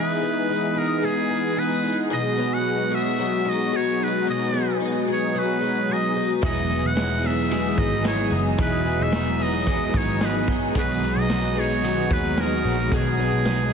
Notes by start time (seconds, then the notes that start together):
Already playing: E3 G#3 B3 D#4 G#4 B4
0.21 B3
0.49 D#4
0.76 G#4 A#4
1.03 G#3 G#4
1.30 D#4
1.56 G#4 B4
1.84 D#4
2.10 B2 F#3 F#4 G#4 D#5
2.37 B3
2.54 F#5
2.91 G#4 E5
3.19 F#3
3.46 D#4 D#5
3.73 G#4 C#5
4.00 D#4 B4
4.26 B2 G#4 D#5
4.53 B3
4.80 D#4
5.08 G#4
5.12 C#5
5.34 F#3 B4
5.61 D#4
5.89 G#4 D#5
6.16 D#4
6.42 E1 E3 G#3 B3 D#4 G#4 D#5, kick, ride
6.69 B3 D#4 G#4
6.83 E1 F#5
6.95 G#3 B3 D#4 G#4, snare, ride, tambourine
7.22 B3 D#4 G#4 E5
7.50 E3 G#3 B3 D#4 G#4, ride
7.78 G#1 B3 D#4 G#4 D#5, kick
8.04 G#3 B3 D#4 G#4 C#5, snare, ride, tambourine
8.31 F#1 B3 D#4 G#4
8.58 E1 E3 G#3 B3 D#4 G#4, kick, ride
8.62 B4
8.84 B3 D#4 G#4
8.99 E1 E5
9.12 G#3 B3 D#4 G#4, snare, ride, tambourine
9.39 B3 D#4 G#4 D#5
9.66 E3 G#3 B3 D#4 G#4, kick, ride
9.93 G#1 B3 D#4 G#4, kick
9.97 C#5
10.20 G#3 B3 D#4 G#4, snare, ride, tambourine
10.25 B4
10.47 B3 D#4 G#4, kick
10.75 B1 B2 D#3 F#3 G#3 B3 D#4 F#4 G#4, kick, ride
10.79 B4
11.02 F#3 B3 D#4 G#4
11.16 B1 D#5
11.28 F#3 B3 D#4 G#4, snare, ride, tambourine
11.55 F#3 B3 D#4 G#4
11.59 C#5
11.82 B2 D#3 F#3 B3 D#4 G#4, ride
12.10 D#2 F#3 D#4 G#4 B4, kick
12.37 F#3 B3 D#4 G#4 A#4, snare, ride, tambourine
12.64 A#1 F#3 B3 D#4 G#4
12.91 B1 B2 D#3 F#3 B3 D#4 G#4, kick, ride
12.95 G#4
13.18 F#3 B3 D#4 G#4
13.33 B1
13.45 F#3 B3 D#4 G#4, snare, ride, tambourine